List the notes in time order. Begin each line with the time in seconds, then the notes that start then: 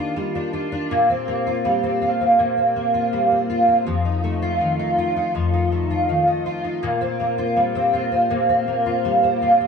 Already playing: D#3 G3 A#3 D4 F4
0.16 G3
0.35 D4
0.53 F4
0.72 D4
0.91 A#2
1.10 C4
1.28 A#3
1.47 F4
1.65 G3
1.83 C4
2.02 F4
2.21 C4
2.39 A#2
2.57 C4
2.76 A#3
2.94 F4
3.13 G3
3.31 C4
3.50 F4
3.68 C4
3.86 F2
4.05 D#4
4.24 A3
4.42 F4
4.61 D#3
4.79 D#4
4.98 F4
5.16 D#4
5.35 F2
5.53 D#4
5.72 A3
5.90 F4
6.09 D#3
6.27 D#4
6.46 F4
6.64 D#4
6.83 A#2
7.01 C4
7.20 A#3
7.38 F4
7.56 G3
7.75 C4
7.93 F4
8.12 C4
8.30 A#2
8.49 C4
8.68 A#3
8.86 F4
9.05 G3
9.23 C4
9.42 F4
9.60 C4